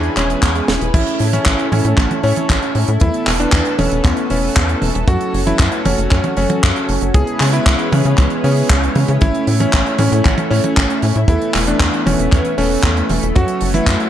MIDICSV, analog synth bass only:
0, 0, Header, 1, 2, 480
1, 0, Start_track
1, 0, Key_signature, 3, "major"
1, 0, Tempo, 517241
1, 874, Time_signature, 4, 2, 24, 8
1, 13081, End_track
2, 0, Start_track
2, 0, Title_t, "Analog synth bass"
2, 0, Program_c, 0, 38
2, 153, Note_on_c, 0, 28, 93
2, 330, Note_off_c, 0, 28, 0
2, 397, Note_on_c, 0, 40, 80
2, 571, Note_off_c, 0, 40, 0
2, 635, Note_on_c, 0, 28, 93
2, 722, Note_off_c, 0, 28, 0
2, 754, Note_on_c, 0, 28, 91
2, 842, Note_off_c, 0, 28, 0
2, 872, Note_on_c, 0, 33, 100
2, 961, Note_off_c, 0, 33, 0
2, 1115, Note_on_c, 0, 45, 86
2, 1291, Note_off_c, 0, 45, 0
2, 1356, Note_on_c, 0, 33, 85
2, 1443, Note_off_c, 0, 33, 0
2, 1596, Note_on_c, 0, 45, 107
2, 1683, Note_off_c, 0, 45, 0
2, 1715, Note_on_c, 0, 45, 97
2, 1802, Note_off_c, 0, 45, 0
2, 1834, Note_on_c, 0, 33, 91
2, 1922, Note_off_c, 0, 33, 0
2, 2075, Note_on_c, 0, 45, 94
2, 2163, Note_off_c, 0, 45, 0
2, 2317, Note_on_c, 0, 33, 88
2, 2404, Note_off_c, 0, 33, 0
2, 2554, Note_on_c, 0, 45, 98
2, 2642, Note_off_c, 0, 45, 0
2, 2675, Note_on_c, 0, 45, 102
2, 2763, Note_off_c, 0, 45, 0
2, 2798, Note_on_c, 0, 40, 105
2, 2884, Note_off_c, 0, 40, 0
2, 3034, Note_on_c, 0, 28, 88
2, 3210, Note_off_c, 0, 28, 0
2, 3274, Note_on_c, 0, 40, 86
2, 3362, Note_off_c, 0, 40, 0
2, 3514, Note_on_c, 0, 28, 104
2, 3602, Note_off_c, 0, 28, 0
2, 3636, Note_on_c, 0, 28, 98
2, 3723, Note_off_c, 0, 28, 0
2, 3755, Note_on_c, 0, 40, 81
2, 3843, Note_off_c, 0, 40, 0
2, 3994, Note_on_c, 0, 28, 83
2, 4170, Note_off_c, 0, 28, 0
2, 4237, Note_on_c, 0, 40, 102
2, 4412, Note_off_c, 0, 40, 0
2, 4474, Note_on_c, 0, 28, 100
2, 4562, Note_off_c, 0, 28, 0
2, 4594, Note_on_c, 0, 28, 99
2, 4682, Note_off_c, 0, 28, 0
2, 4711, Note_on_c, 0, 42, 103
2, 4801, Note_off_c, 0, 42, 0
2, 4954, Note_on_c, 0, 30, 92
2, 5130, Note_off_c, 0, 30, 0
2, 5193, Note_on_c, 0, 42, 89
2, 5281, Note_off_c, 0, 42, 0
2, 5432, Note_on_c, 0, 30, 108
2, 5521, Note_off_c, 0, 30, 0
2, 5552, Note_on_c, 0, 30, 99
2, 5641, Note_off_c, 0, 30, 0
2, 5676, Note_on_c, 0, 42, 87
2, 5763, Note_off_c, 0, 42, 0
2, 5912, Note_on_c, 0, 30, 99
2, 6001, Note_off_c, 0, 30, 0
2, 6158, Note_on_c, 0, 42, 89
2, 6244, Note_off_c, 0, 42, 0
2, 6393, Note_on_c, 0, 30, 102
2, 6481, Note_off_c, 0, 30, 0
2, 6512, Note_on_c, 0, 30, 97
2, 6601, Note_off_c, 0, 30, 0
2, 6630, Note_on_c, 0, 37, 98
2, 6720, Note_off_c, 0, 37, 0
2, 6872, Note_on_c, 0, 49, 91
2, 7049, Note_off_c, 0, 49, 0
2, 7111, Note_on_c, 0, 37, 82
2, 7200, Note_off_c, 0, 37, 0
2, 7352, Note_on_c, 0, 49, 109
2, 7441, Note_off_c, 0, 49, 0
2, 7473, Note_on_c, 0, 49, 101
2, 7561, Note_off_c, 0, 49, 0
2, 7594, Note_on_c, 0, 37, 86
2, 7682, Note_off_c, 0, 37, 0
2, 7832, Note_on_c, 0, 49, 88
2, 8009, Note_off_c, 0, 49, 0
2, 8073, Note_on_c, 0, 37, 106
2, 8249, Note_off_c, 0, 37, 0
2, 8311, Note_on_c, 0, 49, 97
2, 8401, Note_off_c, 0, 49, 0
2, 8432, Note_on_c, 0, 49, 101
2, 8521, Note_off_c, 0, 49, 0
2, 8554, Note_on_c, 0, 33, 96
2, 8642, Note_off_c, 0, 33, 0
2, 8792, Note_on_c, 0, 45, 87
2, 8969, Note_off_c, 0, 45, 0
2, 9037, Note_on_c, 0, 33, 89
2, 9123, Note_off_c, 0, 33, 0
2, 9272, Note_on_c, 0, 45, 108
2, 9361, Note_off_c, 0, 45, 0
2, 9392, Note_on_c, 0, 45, 98
2, 9481, Note_off_c, 0, 45, 0
2, 9518, Note_on_c, 0, 33, 88
2, 9604, Note_off_c, 0, 33, 0
2, 9753, Note_on_c, 0, 45, 93
2, 9841, Note_off_c, 0, 45, 0
2, 9997, Note_on_c, 0, 33, 86
2, 10083, Note_off_c, 0, 33, 0
2, 10234, Note_on_c, 0, 45, 97
2, 10322, Note_off_c, 0, 45, 0
2, 10354, Note_on_c, 0, 45, 95
2, 10442, Note_off_c, 0, 45, 0
2, 10467, Note_on_c, 0, 40, 100
2, 10558, Note_off_c, 0, 40, 0
2, 10715, Note_on_c, 0, 28, 84
2, 10891, Note_off_c, 0, 28, 0
2, 10950, Note_on_c, 0, 40, 93
2, 11040, Note_off_c, 0, 40, 0
2, 11194, Note_on_c, 0, 28, 104
2, 11282, Note_off_c, 0, 28, 0
2, 11314, Note_on_c, 0, 28, 104
2, 11402, Note_off_c, 0, 28, 0
2, 11438, Note_on_c, 0, 40, 89
2, 11524, Note_off_c, 0, 40, 0
2, 11674, Note_on_c, 0, 28, 89
2, 11850, Note_off_c, 0, 28, 0
2, 11909, Note_on_c, 0, 40, 100
2, 12088, Note_off_c, 0, 40, 0
2, 12154, Note_on_c, 0, 28, 99
2, 12242, Note_off_c, 0, 28, 0
2, 12274, Note_on_c, 0, 28, 105
2, 12362, Note_off_c, 0, 28, 0
2, 12400, Note_on_c, 0, 42, 100
2, 12485, Note_off_c, 0, 42, 0
2, 12634, Note_on_c, 0, 30, 87
2, 12810, Note_off_c, 0, 30, 0
2, 12869, Note_on_c, 0, 42, 88
2, 12959, Note_off_c, 0, 42, 0
2, 13081, End_track
0, 0, End_of_file